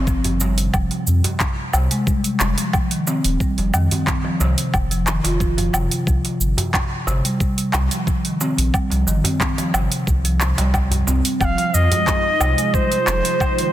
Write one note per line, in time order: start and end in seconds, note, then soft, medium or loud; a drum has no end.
0.00 0.69 G1 medium
0.07 0.23 F3 medium
0.07 kick loud
0.07 cabasa soft
0.24 0.40 F3 medium
0.24 open hi-hat soft
0.24 darbuka dum medium
0.40 0.50 G3 medium
0.40 darbuka tek medium
0.40 cabasa medium
0.58 0.72 C3 medium
0.58 open hi-hat medium
0.58 cabasa soft
0.74 0.88 F1 medium
0.74 0.90 F3 medium
0.74 kick loud
0.74 cabasa soft
0.74 low woodblock medium
0.91 open hi-hat soft
0.91 darbuka tek soft
1.07 1.22 F2 medium
1.07 cabasa medium
1.24 open hi-hat soft
1.24 darbuka dum medium
1.24 cabasa soft
1.40 kick loud
1.40 clap medium
1.40 cabasa soft
1.73 1.88 C2 medium
1.73 1.90 C3 medium
1.73 darbuka tek medium
1.73 cabasa medium
1.73 low woodblock medium
1.91 2.00 G#3 medium
1.91 open hi-hat medium
1.91 cabasa soft
2.07 2.24 G3 medium
2.07 kick loud
2.07 cabasa soft
2.24 open hi-hat soft
2.24 cabasa soft
2.40 2.55 F1 loud
2.40 clap medium
2.40 darbuka tek medium
2.40 cabasa medium
2.58 2.73 F3 medium
2.58 open hi-hat soft
2.58 darbuka ka soft
2.58 cabasa soft
2.73 2.90 F3 medium
2.73 kick loud
2.73 cabasa soft
2.73 low woodblock medium
2.91 3.05 D#3 medium
2.91 open hi-hat soft
3.07 3.39 C4 medium
3.07 darbuka tek medium
3.07 cabasa medium
3.24 3.38 D#1 medium
3.24 open hi-hat medium
3.24 darbuka ka soft
3.24 cabasa soft
3.40 3.57 G3 medium
3.40 kick loud
3.40 cabasa soft
3.58 3.71 F1 loud
3.58 3.72 F3 medium
3.58 open hi-hat soft
3.58 darbuka ka soft
3.58 darbuka tek soft
3.74 3.88 F2 medium
3.74 3.90 D#3 medium
3.74 darbuka ka medium
3.74 cabasa medium
3.74 low woodblock medium
3.91 4.23 C4 medium
3.91 open hi-hat soft
3.91 darbuka dum medium
3.91 cabasa soft
4.07 kick medium
4.07 clap medium
4.07 cabasa soft
4.24 4.40 F3 loud
4.24 darbuka ka medium
4.40 4.55 C2 medium
4.40 4.90 C3 medium
4.40 darbuka tek medium
4.40 cabasa medium
4.58 open hi-hat medium
4.58 cabasa soft
4.74 5.20 F1 medium
4.74 kick medium
4.74 cabasa soft
4.74 low woodblock medium
4.91 5.06 F3 medium
4.91 open hi-hat soft
4.91 cabasa soft
5.07 5.24 D#3 medium
5.07 clap medium
5.07 cabasa medium
5.24 5.69 F1 medium
5.24 5.39 F4 medium
5.24 open hi-hat medium
5.24 darbuka tek medium
5.24 cabasa soft
5.40 5.56 F3 medium
5.40 kick loud
5.40 cabasa soft
5.58 5.73 F3 loud
5.58 open hi-hat soft
5.58 darbuka dum medium
5.73 5.88 F1 medium
5.73 6.06 C3 medium
5.73 darbuka tek medium
5.73 cabasa medium
5.73 low woodblock medium
5.91 open hi-hat soft
5.91 cabasa soft
6.07 6.22 C2 loud
6.07 6.24 F3 medium
6.07 kick loud
6.07 cabasa soft
6.25 open hi-hat soft
6.25 darbuka tek soft
6.40 6.55 G1 medium
6.40 cabasa medium
6.58 open hi-hat medium
6.58 darbuka dum medium
6.58 cabasa soft
6.74 kick medium
6.74 clap medium
6.74 cabasa soft
6.74 low woodblock medium
7.07 7.22 G1 medium
7.07 7.24 C3 medium
7.07 darbuka tek medium
7.07 cabasa medium
7.25 7.34 G3 medium
7.25 open hi-hat medium
7.25 cabasa soft
7.40 7.57 G3 medium
7.40 kick medium
7.40 cabasa soft
7.58 open hi-hat soft
7.58 cabasa soft
7.73 7.88 C2 loud
7.73 clap medium
7.73 darbuka tek medium
7.73 cabasa medium
7.73 low woodblock medium
7.91 8.06 F3 medium
7.91 open hi-hat medium
7.91 darbuka ka soft
7.91 cabasa soft
8.07 8.23 F3 medium
8.07 kick medium
8.07 cabasa soft
8.25 8.39 D#3 medium
8.25 open hi-hat soft
8.41 8.72 C4 medium
8.41 darbuka tek medium
8.41 cabasa medium
8.57 8.71 A#1 medium
8.57 open hi-hat medium
8.57 darbuka ka soft
8.57 cabasa soft
8.74 8.91 G3 medium
8.74 kick loud
8.74 cabasa soft
8.74 low woodblock medium
8.90 9.04 C2 loud
8.90 9.06 F3 medium
8.90 open hi-hat soft
8.90 darbuka ka soft
8.90 darbuka tek soft
8.90 cabasa soft
9.07 9.22 G1 medium
9.07 9.24 D#3 loud
9.07 darbuka ka soft
9.07 cabasa medium
9.24 9.56 C4 medium
9.24 open hi-hat medium
9.24 darbuka dum medium
9.24 cabasa soft
9.40 kick medium
9.40 clap medium
9.40 cabasa soft
9.58 9.73 F3 medium
9.58 open hi-hat soft
9.58 darbuka ka medium
9.58 cabasa soft
9.74 9.88 G1 medium
9.74 10.23 C3 medium
9.74 darbuka tek medium
9.74 cabasa medium
9.74 low woodblock medium
9.92 open hi-hat medium
9.92 cabasa soft
10.07 10.53 C2 loud
10.07 kick medium
10.07 cabasa soft
10.25 10.40 F3 medium
10.25 open hi-hat soft
10.25 cabasa soft
10.41 10.56 C3 medium
10.41 clap medium
10.41 cabasa medium
10.58 11.03 C2 medium
10.58 10.72 G3 loud
10.58 open hi-hat medium
10.58 darbuka tek medium
10.58 cabasa soft
10.74 10.90 G3 medium
10.74 kick medium
10.74 darbuka tek medium
10.74 cabasa soft
10.74 low woodblock medium
10.91 11.06 G3 medium
10.91 open hi-hat soft
10.91 darbuka dum medium
10.91 cabasa soft
11.07 11.22 C2 medium
11.07 11.24 C4 medium
11.07 darbuka tek medium
11.07 cabasa medium
11.25 open hi-hat medium
11.25 cabasa soft
11.40 11.55 F1 loud
11.40 11.57 F3 medium
11.40 13.72 F3 medium
11.40 11.45 G5 loud
11.40 kick loud
11.40 cabasa soft
11.40 low woodblock medium
11.44 11.76 F5 loud
11.58 open hi-hat soft
11.58 darbuka tek soft
11.74 11.88 F2 medium
11.74 12.76 D#5 loud
11.74 cabasa medium
11.81 13.72 G#3 medium
11.91 open hi-hat medium
11.91 darbuka dum medium
11.91 cabasa soft
12.05 13.72 D#4 medium
12.05 kick loud
12.05 clap medium
12.05 cabasa soft
12.40 12.55 C2 medium
12.40 12.57 C3 medium
12.40 darbuka tek medium
12.40 cabasa medium
12.40 low woodblock medium
12.58 12.67 G#3 medium
12.58 open hi-hat medium
12.58 cabasa soft
12.74 12.90 G3 medium
12.74 13.72 C5 loud
12.74 kick loud
12.74 cabasa soft
12.92 open hi-hat soft
12.92 cabasa soft
13.07 13.22 F1 loud
13.07 clap medium
13.07 darbuka tek medium
13.07 cabasa medium
13.24 13.39 F3 medium
13.24 open hi-hat medium
13.24 darbuka ka soft
13.24 cabasa soft
13.40 13.56 F3 medium
13.40 13.72 G5 medium
13.40 kick loud
13.40 cabasa soft
13.40 low woodblock medium
13.58 13.72 D#3 medium
13.58 open hi-hat soft